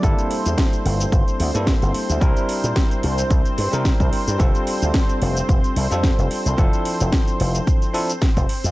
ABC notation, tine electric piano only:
X:1
M:4/4
L:1/16
Q:"Swing 16ths" 1/4=110
K:Gdor
V:1 name="Tine electric piano"
[G,B,DEA]8- [G,B,DEA]3 [G,B,DEA]4- [G,B,DEA] | [G,CDEB]8- [G,CDEB]3 [G,CDEB]4- [G,CDEB] | [G,CDFA]8- [G,CDFA]3 [G,CDFA]4- [G,CDFA] | [F,CDEA]8- [F,CDEA]2 [F,CDEA] z4 z |]